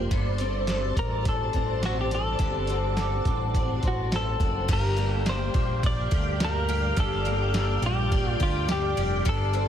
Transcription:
Already playing: twelve-string acoustic guitar A#3 D4 G4, string machine C5
0.11 analog synth bass G1, twelve-string acoustic guitar G2 A4, string machine F#4 D5 A5, kick, closed hi-hat
0.38 twelve-string acoustic guitar C4, closed hi-hat
0.67 twelve-string acoustic guitar A4, snare, closed hi-hat
0.97 analog synth bass A1, twelve-string acoustic guitar C4, clean electric guitar A#4, kick, closed hi-hat
1.25 twelve-string acoustic guitar D4, clean electric guitar A4, kick, closed hi-hat
1.53 analog synth bass A1, twelve-string acoustic guitar C4, kick, closed hi-hat
1.83 clean electric guitar F#4, twelve-string acoustic guitar A4, snare, closed hi-hat
2.01 clean electric guitar G4
2.11 twelve-string acoustic guitar D4, clean electric guitar A4, closed hi-hat
2.39 analog synth bass G1, twelve-string acoustic guitar G2 A4, kick, closed hi-hat
2.67 twelve-string acoustic guitar C4, vibraphone F#5, closed hi-hat
2.97 twelve-string acoustic guitar A4, vibraphone D6, snare, closed hi-hat
3.25 analog synth bass A1, twelve-string acoustic guitar C4, kick, closed hi-hat
3.54 twelve-string acoustic guitar D4, kick, closed hi-hat
3.83 analog synth bass A1, twelve-string acoustic guitar C4, vibraphone C6, kick, closed hi-hat
3.88 clean electric guitar F#4
4.12 twelve-string acoustic guitar A4, clean electric guitar A4, snare, closed hi-hat
4.40 analog synth bass F#1, twelve-string acoustic guitar D4, kick, closed hi-hat
4.68 analog synth bass G1, twelve-string acoustic guitar G2 G4, string machine G4 D5 F5 G5, kick, crash, ride
4.73 clean electric guitar A#4
4.97 twelve-string acoustic guitar A#3, ride
5.14 clean electric guitar A4
5.26 twelve-string acoustic guitar D4, clean electric guitar C5, vibraphone C6, snare, ride, tambourine
5.54 analog synth bass A#1, twelve-string acoustic guitar A#3, kick, ride
5.83 twelve-string acoustic guitar D4, clean electric guitar D5, kick, ride
6.11 analog synth bass D2, twelve-string acoustic guitar G4, kick, ride
6.40 twelve-string acoustic guitar D4, snare, ride, tambourine
6.44 clean electric guitar A#4
6.69 twelve-string acoustic guitar G4, vibraphone F6, ride
6.97 analog synth bass G1, twelve-string acoustic guitar G2 G4, clean electric guitar A4, kick, ride
7.25 twelve-string acoustic guitar A#3, ride
7.54 twelve-string acoustic guitar D4, snare, ride, tambourine
7.82 analog synth bass A#1, twelve-string acoustic guitar A#3, ride
7.86 clean electric guitar G4
8.12 twelve-string acoustic guitar D4, kick, ride
8.31 clean electric guitar F4
8.40 analog synth bass D2, clean electric guitar F4, twelve-string acoustic guitar G4, kick, ride
8.67 twelve-string acoustic guitar D4, vibraphone D6, snare, ride, tambourine
8.72 clean electric guitar G4
8.86 vibraphone F6
8.97 analog synth bass F1, twelve-string acoustic guitar G4, ride
9.25 analog synth bass G1, twelve-string acoustic guitar G2 A4, string machine A4 F#5 C6, clean electric guitar A4, kick, ride
9.53 twelve-string acoustic guitar C4, ride

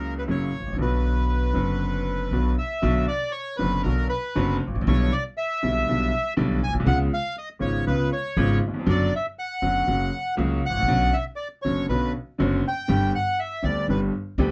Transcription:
Already playing: upright piano C#2 C#3 F#3 A#3 E4, upright bass C#2, bandoneon A#4
0.19 bandoneon B4
0.28 upright bass F#1, upright piano F#2 C#3 F#3 A#3 E4, bandoneon C#5
0.60 upright bass G#1, upright piano G#1
0.66 upright bass A1, upright piano A1
0.72 upright bass A#1, upright piano A#1 D3
0.78 upright bass B1, upright piano B1 B2 F#3 B3 F#4, bandoneon B4
1.53 upright bass F#1, upright piano F#1 F#2 D3 F#3 B3
1.57 upright piano F#4
2.31 upright bass B1, upright piano B1 B2 D3 F#3 B3 F#4
2.58 bandoneon E5
2.82 upright piano B1 B2 D3 F#3 B3 F#4, upright bass B1
3.08 bandoneon D5
3.31 bandoneon C#5
3.57 upright piano F#1 F#2 D3 F#3 B3 F#4, upright bass F#1, bandoneon B4
3.83 upright piano B1 B2 D3 F#3 B3 F#4, upright bass B1, bandoneon A#4
4.09 bandoneon B4
4.35 upright piano F#1 F#2 D3 F#3 B3 F#4, upright bass F#1
4.67 upright piano G#1, upright bass G#1
4.74 upright piano A1, upright bass A1
4.81 upright bass A#1, upright piano A#1
4.87 upright bass B1, upright piano B1 B2 D3 G3 B3 E4, bandoneon C#5
5.12 bandoneon D5
5.37 bandoneon E5
5.62 upright piano B1 B2 D3 G3 B3 E4, upright bass B1
5.87 upright bass B1, upright piano B1 B2 D3 G3 B3 E4
6.37 upright piano B1 B2 D3 G3 B3 E4, upright bass B1
6.63 bandoneon G#5
6.68 upright piano A#1, upright bass A#1
6.73 upright piano B1, upright bass B1
6.80 upright piano C2, upright bass C2
6.85 upright piano C#2 C#3 G#3 B3 F4, upright bass C#2, bandoneon F#5
7.14 bandoneon F5
7.38 bandoneon D#5
7.59 upright piano G#1 G#2 C#3 G#3 B3 F4, upright bass G#1, bandoneon C#5
7.87 upright bass C#2, upright piano C#2 C#3 G#3 B3 F4, bandoneon B4
8.13 bandoneon C#5
8.37 upright bass G#1, upright piano G#1 G#2 C#3 G#3 B3 F4
8.68 upright piano D#2
8.74 upright piano E2
8.79 upright piano F2
8.86 upright bass F#1, upright piano F#2 D3 F#3 B3 F#4, bandoneon D5
9.16 bandoneon E5
9.39 bandoneon F#5
9.62 upright bass F#1, upright piano F#2 D3 F#3 B3 F#4
9.87 upright bass F#1, upright piano F#2 C#3 F#3 A#3 F#4
10.37 upright piano C#2 C#3 F#3 A#3 F#4, upright bass C#2
10.66 bandoneon F#5
10.70 upright bass G#1, upright piano G#1
10.76 upright piano A1, upright bass A1
10.80 upright piano A#1, upright bass A#1
10.88 upright piano B1 B2 D3 B3 C#4 F#4, upright bass B1
11.13 bandoneon E5
11.36 bandoneon D5
11.62 upright piano F#1 F#2 D3 B3 C#4 F#4, upright bass F#1, bandoneon C#5
11.89 upright bass B1, upright piano B1 B2 D3 B3 C#4 F#4, bandoneon B4
12.38 upright piano F#1 F#2 D3 B3 C#4 F#4, upright bass F#1
12.68 bandoneon G5
12.88 upright piano G1 G2 D3 G3 B3 G4, upright bass G1
13.15 bandoneon F#5
13.40 bandoneon E5
13.62 upright piano D2 D3 G3 B3 G4, upright bass D2, bandoneon D5
13.88 upright bass G1, upright piano G1 G2 D3 G3 B3 G4, bandoneon B4
14.38 upright bass D2, upright piano D2 D3 G3 B3 G4

